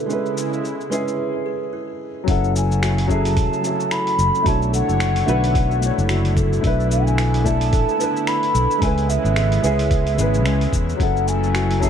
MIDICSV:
0, 0, Header, 1, 7, 480
1, 0, Start_track
1, 0, Key_signature, 3, "minor"
1, 0, Tempo, 545455
1, 84, Time_signature, 4, 2, 24, 8
1, 10470, End_track
2, 0, Start_track
2, 0, Title_t, "Flute"
2, 0, Program_c, 0, 73
2, 2007, Note_on_c, 0, 78, 100
2, 2229, Note_off_c, 0, 78, 0
2, 2254, Note_on_c, 0, 80, 96
2, 2696, Note_off_c, 0, 80, 0
2, 2729, Note_on_c, 0, 81, 104
2, 3443, Note_on_c, 0, 83, 110
2, 3456, Note_off_c, 0, 81, 0
2, 3930, Note_on_c, 0, 81, 106
2, 3943, Note_off_c, 0, 83, 0
2, 4161, Note_off_c, 0, 81, 0
2, 4167, Note_on_c, 0, 78, 90
2, 5570, Note_off_c, 0, 78, 0
2, 5847, Note_on_c, 0, 76, 99
2, 6069, Note_off_c, 0, 76, 0
2, 6086, Note_on_c, 0, 80, 98
2, 6558, Note_on_c, 0, 81, 114
2, 6572, Note_off_c, 0, 80, 0
2, 7281, Note_on_c, 0, 83, 111
2, 7294, Note_off_c, 0, 81, 0
2, 7757, Note_on_c, 0, 80, 104
2, 7770, Note_off_c, 0, 83, 0
2, 7997, Note_on_c, 0, 76, 88
2, 8010, Note_off_c, 0, 80, 0
2, 9441, Note_off_c, 0, 76, 0
2, 9682, Note_on_c, 0, 78, 98
2, 9921, Note_on_c, 0, 80, 92
2, 9934, Note_off_c, 0, 78, 0
2, 10395, Note_on_c, 0, 81, 110
2, 10408, Note_off_c, 0, 80, 0
2, 10470, Note_off_c, 0, 81, 0
2, 10470, End_track
3, 0, Start_track
3, 0, Title_t, "Kalimba"
3, 0, Program_c, 1, 108
3, 82, Note_on_c, 1, 64, 73
3, 303, Note_off_c, 1, 64, 0
3, 560, Note_on_c, 1, 68, 69
3, 782, Note_off_c, 1, 68, 0
3, 801, Note_on_c, 1, 71, 73
3, 1023, Note_off_c, 1, 71, 0
3, 1283, Note_on_c, 1, 68, 70
3, 1504, Note_off_c, 1, 68, 0
3, 1522, Note_on_c, 1, 64, 71
3, 1743, Note_off_c, 1, 64, 0
3, 2003, Note_on_c, 1, 64, 74
3, 2224, Note_off_c, 1, 64, 0
3, 2481, Note_on_c, 1, 66, 72
3, 2703, Note_off_c, 1, 66, 0
3, 2724, Note_on_c, 1, 69, 79
3, 2944, Note_off_c, 1, 69, 0
3, 3205, Note_on_c, 1, 66, 74
3, 3425, Note_off_c, 1, 66, 0
3, 3444, Note_on_c, 1, 64, 75
3, 3664, Note_off_c, 1, 64, 0
3, 3923, Note_on_c, 1, 66, 72
3, 4143, Note_off_c, 1, 66, 0
3, 4163, Note_on_c, 1, 69, 81
3, 4384, Note_off_c, 1, 69, 0
3, 4642, Note_on_c, 1, 66, 82
3, 4863, Note_off_c, 1, 66, 0
3, 4882, Note_on_c, 1, 64, 79
3, 5103, Note_off_c, 1, 64, 0
3, 5361, Note_on_c, 1, 66, 75
3, 5582, Note_off_c, 1, 66, 0
3, 5601, Note_on_c, 1, 69, 72
3, 5822, Note_off_c, 1, 69, 0
3, 6078, Note_on_c, 1, 69, 76
3, 6301, Note_off_c, 1, 69, 0
3, 6320, Note_on_c, 1, 64, 71
3, 6542, Note_off_c, 1, 64, 0
3, 6800, Note_on_c, 1, 69, 83
3, 7022, Note_off_c, 1, 69, 0
3, 7040, Note_on_c, 1, 71, 72
3, 7262, Note_off_c, 1, 71, 0
3, 7519, Note_on_c, 1, 69, 76
3, 7742, Note_off_c, 1, 69, 0
3, 7759, Note_on_c, 1, 64, 76
3, 7982, Note_off_c, 1, 64, 0
3, 8241, Note_on_c, 1, 68, 69
3, 8462, Note_off_c, 1, 68, 0
3, 8479, Note_on_c, 1, 71, 78
3, 8701, Note_off_c, 1, 71, 0
3, 8961, Note_on_c, 1, 76, 75
3, 9182, Note_off_c, 1, 76, 0
3, 9200, Note_on_c, 1, 80, 79
3, 9422, Note_off_c, 1, 80, 0
3, 9679, Note_on_c, 1, 64, 75
3, 9902, Note_off_c, 1, 64, 0
3, 10160, Note_on_c, 1, 66, 78
3, 10382, Note_off_c, 1, 66, 0
3, 10399, Note_on_c, 1, 69, 77
3, 10470, Note_off_c, 1, 69, 0
3, 10470, End_track
4, 0, Start_track
4, 0, Title_t, "Grand piano"
4, 0, Program_c, 2, 0
4, 0, Control_c, 2, 64, 127
4, 0, Note_on_c, 2, 47, 72
4, 0, Note_on_c, 2, 57, 63
4, 0, Note_on_c, 2, 62, 63
4, 0, Note_on_c, 2, 64, 65
4, 0, Note_on_c, 2, 69, 100
4, 0, Note_on_c, 2, 71, 75
4, 54, Note_on_c, 2, 56, 79
4, 74, Note_on_c, 2, 61, 71
4, 94, Note_off_c, 2, 64, 0
4, 94, Note_on_c, 2, 64, 71
4, 96, Control_c, 2, 64, 0
4, 97, Note_off_c, 2, 47, 0
4, 101, Note_off_c, 2, 71, 0
4, 103, Note_off_c, 2, 62, 0
4, 104, Note_off_c, 2, 69, 0
4, 105, Note_off_c, 2, 57, 0
4, 111, Note_on_c, 2, 71, 83
4, 247, Control_c, 2, 64, 127
4, 765, Note_off_c, 2, 56, 0
4, 775, Note_off_c, 2, 61, 0
4, 785, Note_off_c, 2, 64, 0
4, 791, Note_on_c, 2, 56, 92
4, 793, Note_off_c, 2, 71, 0
4, 801, Note_on_c, 2, 61, 79
4, 810, Note_on_c, 2, 64, 82
4, 819, Note_on_c, 2, 68, 100
4, 999, Note_off_c, 2, 56, 0
4, 1004, Note_off_c, 2, 61, 0
4, 1008, Note_off_c, 2, 64, 0
4, 1013, Note_off_c, 2, 68, 0
4, 1969, Note_on_c, 2, 54, 85
4, 1989, Note_on_c, 2, 61, 78
4, 2010, Note_on_c, 2, 64, 81
4, 2017, Control_c, 2, 64, 0
4, 2031, Note_on_c, 2, 69, 91
4, 2182, Control_c, 2, 64, 127
4, 2682, Note_off_c, 2, 54, 0
4, 2692, Note_off_c, 2, 61, 0
4, 2703, Note_off_c, 2, 64, 0
4, 2705, Note_on_c, 2, 54, 101
4, 2713, Note_off_c, 2, 69, 0
4, 2714, Note_on_c, 2, 61, 92
4, 2724, Note_on_c, 2, 64, 91
4, 2735, Note_on_c, 2, 68, 107
4, 2916, Note_off_c, 2, 54, 0
4, 2921, Note_off_c, 2, 61, 0
4, 2926, Note_off_c, 2, 64, 0
4, 2931, Note_off_c, 2, 68, 0
4, 3171, Note_on_c, 2, 54, 76
4, 3192, Note_on_c, 2, 61, 65
4, 3211, Note_on_c, 2, 64, 67
4, 3232, Note_on_c, 2, 69, 85
4, 3883, Note_off_c, 2, 54, 0
4, 3890, Note_on_c, 2, 57, 86
4, 3894, Note_off_c, 2, 61, 0
4, 3904, Note_off_c, 2, 64, 0
4, 3911, Note_on_c, 2, 62, 76
4, 3914, Note_off_c, 2, 69, 0
4, 3929, Note_on_c, 2, 64, 76
4, 3936, Control_c, 2, 64, 0
4, 3947, Note_on_c, 2, 73, 93
4, 4082, Control_c, 2, 64, 127
4, 4603, Note_off_c, 2, 57, 0
4, 4613, Note_off_c, 2, 62, 0
4, 4623, Note_off_c, 2, 64, 0
4, 4625, Note_on_c, 2, 57, 103
4, 4632, Note_off_c, 2, 73, 0
4, 4636, Note_on_c, 2, 62, 91
4, 4643, Note_on_c, 2, 64, 92
4, 4655, Note_on_c, 2, 71, 110
4, 4836, Note_off_c, 2, 57, 0
4, 4841, Note_off_c, 2, 62, 0
4, 4845, Note_off_c, 2, 64, 0
4, 4851, Note_off_c, 2, 71, 0
4, 5097, Note_on_c, 2, 57, 77
4, 5115, Note_on_c, 2, 62, 69
4, 5133, Note_on_c, 2, 64, 68
4, 5155, Note_on_c, 2, 73, 86
4, 5798, Note_off_c, 2, 57, 0
4, 5812, Note_on_c, 2, 57, 82
4, 5815, Note_off_c, 2, 62, 0
4, 5824, Note_off_c, 2, 64, 0
4, 5830, Note_on_c, 2, 62, 81
4, 5836, Note_off_c, 2, 73, 0
4, 5848, Note_on_c, 2, 64, 83
4, 5857, Control_c, 2, 64, 0
4, 5870, Note_on_c, 2, 71, 99
4, 5993, Control_c, 2, 64, 127
4, 6524, Note_off_c, 2, 57, 0
4, 6533, Note_off_c, 2, 62, 0
4, 6542, Note_off_c, 2, 64, 0
4, 6547, Note_on_c, 2, 57, 104
4, 6553, Note_off_c, 2, 71, 0
4, 6557, Note_on_c, 2, 62, 89
4, 6565, Note_on_c, 2, 64, 95
4, 6578, Note_on_c, 2, 69, 112
4, 6757, Note_off_c, 2, 57, 0
4, 6762, Note_off_c, 2, 62, 0
4, 6766, Note_off_c, 2, 64, 0
4, 6772, Note_off_c, 2, 69, 0
4, 7010, Note_on_c, 2, 57, 75
4, 7028, Note_on_c, 2, 62, 71
4, 7048, Note_on_c, 2, 64, 71
4, 7069, Note_on_c, 2, 71, 88
4, 7723, Note_off_c, 2, 57, 0
4, 7729, Note_on_c, 2, 56, 86
4, 7732, Note_off_c, 2, 62, 0
4, 7742, Note_off_c, 2, 64, 0
4, 7747, Note_on_c, 2, 61, 80
4, 7753, Note_off_c, 2, 71, 0
4, 7769, Note_on_c, 2, 64, 81
4, 7775, Control_c, 2, 64, 0
4, 7785, Note_on_c, 2, 71, 96
4, 7905, Control_c, 2, 64, 127
4, 8442, Note_off_c, 2, 56, 0
4, 8451, Note_off_c, 2, 61, 0
4, 8463, Note_off_c, 2, 64, 0
4, 8468, Note_on_c, 2, 56, 101
4, 8470, Note_off_c, 2, 71, 0
4, 8476, Note_on_c, 2, 61, 89
4, 8485, Note_on_c, 2, 64, 92
4, 8493, Note_on_c, 2, 68, 110
4, 8677, Note_off_c, 2, 56, 0
4, 8681, Note_off_c, 2, 61, 0
4, 8686, Note_off_c, 2, 64, 0
4, 8690, Note_off_c, 2, 68, 0
4, 8929, Note_on_c, 2, 56, 79
4, 8947, Note_on_c, 2, 61, 75
4, 8969, Note_on_c, 2, 64, 71
4, 8984, Note_on_c, 2, 71, 89
4, 9642, Note_off_c, 2, 56, 0
4, 9651, Note_off_c, 2, 61, 0
4, 9651, Note_on_c, 2, 54, 86
4, 9662, Note_off_c, 2, 64, 0
4, 9668, Note_on_c, 2, 61, 79
4, 9670, Note_off_c, 2, 71, 0
4, 9687, Note_on_c, 2, 64, 80
4, 9696, Control_c, 2, 64, 0
4, 9705, Note_on_c, 2, 69, 95
4, 9841, Control_c, 2, 64, 127
4, 10363, Note_off_c, 2, 54, 0
4, 10372, Note_off_c, 2, 61, 0
4, 10381, Note_off_c, 2, 64, 0
4, 10383, Note_on_c, 2, 54, 104
4, 10390, Note_off_c, 2, 69, 0
4, 10397, Note_on_c, 2, 61, 91
4, 10405, Note_on_c, 2, 64, 93
4, 10414, Note_on_c, 2, 68, 118
4, 10470, Note_off_c, 2, 54, 0
4, 10470, Note_off_c, 2, 61, 0
4, 10470, Note_off_c, 2, 64, 0
4, 10470, Note_off_c, 2, 68, 0
4, 10470, End_track
5, 0, Start_track
5, 0, Title_t, "Analog synth pad"
5, 0, Program_c, 3, 89
5, 0, Note_on_c, 3, 59, 64
5, 83, Note_on_c, 3, 64, 76
5, 84, Note_on_c, 3, 56, 66
5, 86, Note_on_c, 3, 49, 70
5, 1011, Note_off_c, 3, 59, 0
5, 1034, Note_off_c, 3, 64, 0
5, 1035, Note_off_c, 3, 56, 0
5, 1036, Note_off_c, 3, 49, 0
5, 2012, Note_on_c, 3, 49, 75
5, 2013, Note_on_c, 3, 57, 70
5, 2015, Note_on_c, 3, 64, 81
5, 2017, Note_on_c, 3, 54, 69
5, 3909, Note_off_c, 3, 49, 0
5, 3912, Note_off_c, 3, 54, 0
5, 3923, Note_on_c, 3, 50, 84
5, 3923, Note_on_c, 3, 73, 76
5, 5825, Note_off_c, 3, 73, 0
5, 5851, Note_on_c, 3, 59, 68
5, 7729, Note_off_c, 3, 50, 0
5, 7734, Note_off_c, 3, 57, 0
5, 7749, Note_off_c, 3, 59, 0
5, 7765, Note_on_c, 3, 59, 70
5, 7766, Note_on_c, 3, 56, 70
5, 7768, Note_on_c, 3, 49, 74
5, 9665, Note_off_c, 3, 59, 0
5, 9666, Note_off_c, 3, 56, 0
5, 9686, Note_on_c, 3, 57, 71
5, 9687, Note_on_c, 3, 54, 73
5, 10470, Note_off_c, 3, 49, 0
5, 10470, Note_off_c, 3, 54, 0
5, 10470, Note_off_c, 3, 57, 0
5, 10470, Note_off_c, 3, 64, 0
5, 10470, End_track
6, 0, Start_track
6, 0, Title_t, "Fretless electric bass"
6, 0, Program_c, 4, 35
6, 2003, Note_on_c, 4, 30, 86
6, 2962, Note_off_c, 4, 30, 0
6, 2962, Note_on_c, 4, 28, 96
6, 3055, Note_off_c, 4, 28, 0
6, 3681, Note_on_c, 4, 30, 86
6, 3775, Note_off_c, 4, 30, 0
6, 3924, Note_on_c, 4, 35, 97
6, 4228, Note_off_c, 4, 35, 0
6, 4302, Note_on_c, 4, 30, 85
6, 4590, Note_off_c, 4, 30, 0
6, 4645, Note_on_c, 4, 35, 85
6, 5189, Note_off_c, 4, 35, 0
6, 5262, Note_on_c, 4, 30, 100
6, 5790, Note_off_c, 4, 30, 0
6, 5842, Note_on_c, 4, 35, 91
6, 6802, Note_off_c, 4, 35, 0
6, 6802, Note_on_c, 4, 33, 100
6, 6895, Note_off_c, 4, 33, 0
6, 7519, Note_on_c, 4, 35, 84
6, 7614, Note_off_c, 4, 35, 0
6, 7759, Note_on_c, 4, 37, 92
6, 8066, Note_off_c, 4, 37, 0
6, 8133, Note_on_c, 4, 32, 96
6, 8425, Note_off_c, 4, 32, 0
6, 8479, Note_on_c, 4, 37, 79
6, 8953, Note_off_c, 4, 37, 0
6, 8958, Note_on_c, 4, 32, 98
6, 9197, Note_off_c, 4, 32, 0
6, 9197, Note_on_c, 4, 37, 71
6, 9372, Note_off_c, 4, 37, 0
6, 9439, Note_on_c, 4, 40, 90
6, 9614, Note_off_c, 4, 40, 0
6, 9678, Note_on_c, 4, 30, 91
6, 10470, Note_off_c, 4, 30, 0
6, 10470, End_track
7, 0, Start_track
7, 0, Title_t, "Drums"
7, 89, Note_on_c, 9, 69, 36
7, 177, Note_off_c, 9, 69, 0
7, 227, Note_on_c, 9, 69, 19
7, 315, Note_off_c, 9, 69, 0
7, 330, Note_on_c, 9, 69, 69
7, 418, Note_off_c, 9, 69, 0
7, 469, Note_on_c, 9, 69, 29
7, 557, Note_off_c, 9, 69, 0
7, 572, Note_on_c, 9, 69, 37
7, 660, Note_off_c, 9, 69, 0
7, 710, Note_on_c, 9, 69, 19
7, 798, Note_off_c, 9, 69, 0
7, 811, Note_on_c, 9, 69, 65
7, 899, Note_off_c, 9, 69, 0
7, 950, Note_on_c, 9, 69, 29
7, 1038, Note_off_c, 9, 69, 0
7, 2004, Note_on_c, 9, 46, 69
7, 2005, Note_on_c, 9, 36, 117
7, 2009, Note_on_c, 9, 69, 41
7, 2092, Note_off_c, 9, 46, 0
7, 2093, Note_off_c, 9, 36, 0
7, 2097, Note_off_c, 9, 69, 0
7, 2149, Note_on_c, 9, 69, 21
7, 2237, Note_off_c, 9, 69, 0
7, 2252, Note_on_c, 9, 69, 76
7, 2340, Note_off_c, 9, 69, 0
7, 2390, Note_on_c, 9, 69, 34
7, 2478, Note_off_c, 9, 69, 0
7, 2488, Note_on_c, 9, 26, 112
7, 2488, Note_on_c, 9, 46, 69
7, 2493, Note_on_c, 9, 69, 44
7, 2576, Note_off_c, 9, 26, 0
7, 2576, Note_off_c, 9, 46, 0
7, 2581, Note_off_c, 9, 69, 0
7, 2626, Note_on_c, 9, 46, 48
7, 2631, Note_on_c, 9, 69, 22
7, 2714, Note_off_c, 9, 46, 0
7, 2719, Note_off_c, 9, 69, 0
7, 2724, Note_on_c, 9, 36, 61
7, 2731, Note_on_c, 9, 69, 74
7, 2812, Note_off_c, 9, 36, 0
7, 2819, Note_off_c, 9, 69, 0
7, 2863, Note_on_c, 9, 46, 44
7, 2868, Note_on_c, 9, 69, 33
7, 2951, Note_off_c, 9, 46, 0
7, 2956, Note_off_c, 9, 69, 0
7, 2963, Note_on_c, 9, 46, 66
7, 2965, Note_on_c, 9, 36, 118
7, 2968, Note_on_c, 9, 69, 45
7, 3051, Note_off_c, 9, 46, 0
7, 3053, Note_off_c, 9, 36, 0
7, 3056, Note_off_c, 9, 69, 0
7, 3107, Note_on_c, 9, 69, 23
7, 3195, Note_off_c, 9, 69, 0
7, 3206, Note_on_c, 9, 69, 73
7, 3294, Note_off_c, 9, 69, 0
7, 3346, Note_on_c, 9, 69, 35
7, 3434, Note_off_c, 9, 69, 0
7, 3443, Note_on_c, 9, 26, 109
7, 3443, Note_on_c, 9, 46, 76
7, 3448, Note_on_c, 9, 69, 46
7, 3531, Note_off_c, 9, 26, 0
7, 3531, Note_off_c, 9, 46, 0
7, 3536, Note_off_c, 9, 69, 0
7, 3582, Note_on_c, 9, 46, 35
7, 3586, Note_on_c, 9, 69, 23
7, 3670, Note_off_c, 9, 46, 0
7, 3674, Note_off_c, 9, 69, 0
7, 3687, Note_on_c, 9, 69, 73
7, 3775, Note_off_c, 9, 69, 0
7, 3827, Note_on_c, 9, 69, 33
7, 3915, Note_off_c, 9, 69, 0
7, 3924, Note_on_c, 9, 36, 123
7, 3925, Note_on_c, 9, 46, 61
7, 3930, Note_on_c, 9, 69, 45
7, 4012, Note_off_c, 9, 36, 0
7, 4013, Note_off_c, 9, 46, 0
7, 4018, Note_off_c, 9, 69, 0
7, 4067, Note_on_c, 9, 69, 23
7, 4155, Note_off_c, 9, 69, 0
7, 4169, Note_on_c, 9, 69, 80
7, 4257, Note_off_c, 9, 69, 0
7, 4305, Note_on_c, 9, 69, 33
7, 4393, Note_off_c, 9, 69, 0
7, 4403, Note_on_c, 9, 26, 104
7, 4403, Note_on_c, 9, 46, 69
7, 4407, Note_on_c, 9, 69, 47
7, 4491, Note_off_c, 9, 26, 0
7, 4491, Note_off_c, 9, 46, 0
7, 4495, Note_off_c, 9, 69, 0
7, 4541, Note_on_c, 9, 46, 44
7, 4545, Note_on_c, 9, 69, 23
7, 4629, Note_off_c, 9, 46, 0
7, 4633, Note_off_c, 9, 69, 0
7, 4648, Note_on_c, 9, 69, 79
7, 4736, Note_off_c, 9, 69, 0
7, 4785, Note_on_c, 9, 46, 45
7, 4790, Note_on_c, 9, 69, 38
7, 4873, Note_off_c, 9, 46, 0
7, 4878, Note_off_c, 9, 69, 0
7, 4884, Note_on_c, 9, 36, 117
7, 4886, Note_on_c, 9, 46, 61
7, 4891, Note_on_c, 9, 69, 46
7, 4972, Note_off_c, 9, 36, 0
7, 4974, Note_off_c, 9, 46, 0
7, 4979, Note_off_c, 9, 69, 0
7, 5027, Note_on_c, 9, 69, 23
7, 5115, Note_off_c, 9, 69, 0
7, 5126, Note_on_c, 9, 69, 82
7, 5214, Note_off_c, 9, 69, 0
7, 5267, Note_on_c, 9, 69, 37
7, 5355, Note_off_c, 9, 69, 0
7, 5360, Note_on_c, 9, 26, 106
7, 5360, Note_on_c, 9, 46, 70
7, 5365, Note_on_c, 9, 69, 50
7, 5448, Note_off_c, 9, 26, 0
7, 5448, Note_off_c, 9, 46, 0
7, 5453, Note_off_c, 9, 69, 0
7, 5500, Note_on_c, 9, 46, 35
7, 5504, Note_on_c, 9, 69, 24
7, 5588, Note_off_c, 9, 46, 0
7, 5592, Note_off_c, 9, 69, 0
7, 5603, Note_on_c, 9, 36, 108
7, 5606, Note_on_c, 9, 69, 78
7, 5691, Note_off_c, 9, 36, 0
7, 5694, Note_off_c, 9, 69, 0
7, 5745, Note_on_c, 9, 69, 35
7, 5833, Note_off_c, 9, 69, 0
7, 5842, Note_on_c, 9, 36, 123
7, 5842, Note_on_c, 9, 46, 65
7, 5847, Note_on_c, 9, 69, 42
7, 5930, Note_off_c, 9, 36, 0
7, 5930, Note_off_c, 9, 46, 0
7, 5935, Note_off_c, 9, 69, 0
7, 5985, Note_on_c, 9, 69, 23
7, 6073, Note_off_c, 9, 69, 0
7, 6084, Note_on_c, 9, 69, 84
7, 6172, Note_off_c, 9, 69, 0
7, 6224, Note_on_c, 9, 69, 37
7, 6312, Note_off_c, 9, 69, 0
7, 6320, Note_on_c, 9, 26, 101
7, 6320, Note_on_c, 9, 46, 63
7, 6325, Note_on_c, 9, 69, 47
7, 6408, Note_off_c, 9, 26, 0
7, 6408, Note_off_c, 9, 46, 0
7, 6413, Note_off_c, 9, 69, 0
7, 6461, Note_on_c, 9, 46, 45
7, 6465, Note_on_c, 9, 69, 24
7, 6549, Note_off_c, 9, 46, 0
7, 6553, Note_off_c, 9, 69, 0
7, 6562, Note_on_c, 9, 36, 61
7, 6565, Note_on_c, 9, 69, 76
7, 6650, Note_off_c, 9, 36, 0
7, 6653, Note_off_c, 9, 69, 0
7, 6698, Note_on_c, 9, 46, 45
7, 6702, Note_on_c, 9, 69, 36
7, 6786, Note_off_c, 9, 46, 0
7, 6790, Note_off_c, 9, 69, 0
7, 6800, Note_on_c, 9, 46, 61
7, 6802, Note_on_c, 9, 36, 125
7, 6805, Note_on_c, 9, 69, 45
7, 6888, Note_off_c, 9, 46, 0
7, 6890, Note_off_c, 9, 36, 0
7, 6893, Note_off_c, 9, 69, 0
7, 6942, Note_on_c, 9, 69, 25
7, 7030, Note_off_c, 9, 69, 0
7, 7044, Note_on_c, 9, 69, 82
7, 7132, Note_off_c, 9, 69, 0
7, 7185, Note_on_c, 9, 69, 37
7, 7273, Note_off_c, 9, 69, 0
7, 7280, Note_on_c, 9, 26, 113
7, 7280, Note_on_c, 9, 46, 70
7, 7285, Note_on_c, 9, 69, 49
7, 7368, Note_off_c, 9, 26, 0
7, 7368, Note_off_c, 9, 46, 0
7, 7373, Note_off_c, 9, 69, 0
7, 7418, Note_on_c, 9, 46, 32
7, 7423, Note_on_c, 9, 69, 23
7, 7506, Note_off_c, 9, 46, 0
7, 7511, Note_off_c, 9, 69, 0
7, 7525, Note_on_c, 9, 69, 86
7, 7613, Note_off_c, 9, 69, 0
7, 7664, Note_on_c, 9, 69, 37
7, 7752, Note_off_c, 9, 69, 0
7, 7760, Note_on_c, 9, 36, 119
7, 7761, Note_on_c, 9, 46, 62
7, 7765, Note_on_c, 9, 69, 45
7, 7848, Note_off_c, 9, 36, 0
7, 7849, Note_off_c, 9, 46, 0
7, 7853, Note_off_c, 9, 69, 0
7, 7900, Note_on_c, 9, 46, 29
7, 7904, Note_on_c, 9, 69, 23
7, 7988, Note_off_c, 9, 46, 0
7, 7992, Note_off_c, 9, 69, 0
7, 8005, Note_on_c, 9, 69, 77
7, 8093, Note_off_c, 9, 69, 0
7, 8143, Note_on_c, 9, 69, 35
7, 8231, Note_off_c, 9, 69, 0
7, 8239, Note_on_c, 9, 26, 107
7, 8239, Note_on_c, 9, 46, 60
7, 8244, Note_on_c, 9, 69, 46
7, 8327, Note_off_c, 9, 26, 0
7, 8327, Note_off_c, 9, 46, 0
7, 8332, Note_off_c, 9, 69, 0
7, 8377, Note_on_c, 9, 46, 43
7, 8382, Note_on_c, 9, 69, 25
7, 8465, Note_off_c, 9, 46, 0
7, 8470, Note_off_c, 9, 69, 0
7, 8482, Note_on_c, 9, 69, 76
7, 8570, Note_off_c, 9, 69, 0
7, 8617, Note_on_c, 9, 46, 47
7, 8622, Note_on_c, 9, 69, 36
7, 8705, Note_off_c, 9, 46, 0
7, 8710, Note_off_c, 9, 69, 0
7, 8719, Note_on_c, 9, 36, 127
7, 8720, Note_on_c, 9, 46, 60
7, 8724, Note_on_c, 9, 69, 45
7, 8807, Note_off_c, 9, 36, 0
7, 8808, Note_off_c, 9, 46, 0
7, 8812, Note_off_c, 9, 69, 0
7, 8858, Note_on_c, 9, 46, 30
7, 8863, Note_on_c, 9, 69, 24
7, 8946, Note_off_c, 9, 46, 0
7, 8951, Note_off_c, 9, 69, 0
7, 8964, Note_on_c, 9, 69, 87
7, 9052, Note_off_c, 9, 69, 0
7, 9100, Note_on_c, 9, 69, 34
7, 9188, Note_off_c, 9, 69, 0
7, 9201, Note_on_c, 9, 26, 100
7, 9201, Note_on_c, 9, 46, 65
7, 9205, Note_on_c, 9, 69, 49
7, 9289, Note_off_c, 9, 26, 0
7, 9289, Note_off_c, 9, 46, 0
7, 9293, Note_off_c, 9, 69, 0
7, 9339, Note_on_c, 9, 46, 32
7, 9344, Note_on_c, 9, 69, 24
7, 9427, Note_off_c, 9, 46, 0
7, 9432, Note_off_c, 9, 69, 0
7, 9439, Note_on_c, 9, 36, 105
7, 9445, Note_on_c, 9, 69, 82
7, 9527, Note_off_c, 9, 36, 0
7, 9533, Note_off_c, 9, 69, 0
7, 9587, Note_on_c, 9, 69, 35
7, 9675, Note_off_c, 9, 69, 0
7, 9680, Note_on_c, 9, 36, 119
7, 9684, Note_on_c, 9, 46, 59
7, 9689, Note_on_c, 9, 69, 43
7, 9768, Note_off_c, 9, 36, 0
7, 9772, Note_off_c, 9, 46, 0
7, 9777, Note_off_c, 9, 69, 0
7, 9826, Note_on_c, 9, 69, 23
7, 9914, Note_off_c, 9, 69, 0
7, 9926, Note_on_c, 9, 69, 81
7, 10014, Note_off_c, 9, 69, 0
7, 10064, Note_on_c, 9, 69, 35
7, 10152, Note_off_c, 9, 69, 0
7, 10161, Note_on_c, 9, 26, 104
7, 10161, Note_on_c, 9, 46, 65
7, 10165, Note_on_c, 9, 69, 47
7, 10249, Note_off_c, 9, 26, 0
7, 10249, Note_off_c, 9, 46, 0
7, 10253, Note_off_c, 9, 69, 0
7, 10301, Note_on_c, 9, 46, 44
7, 10306, Note_on_c, 9, 69, 24
7, 10389, Note_off_c, 9, 46, 0
7, 10394, Note_off_c, 9, 69, 0
7, 10401, Note_on_c, 9, 36, 64
7, 10407, Note_on_c, 9, 69, 74
7, 10470, Note_off_c, 9, 36, 0
7, 10470, Note_off_c, 9, 69, 0
7, 10470, End_track
0, 0, End_of_file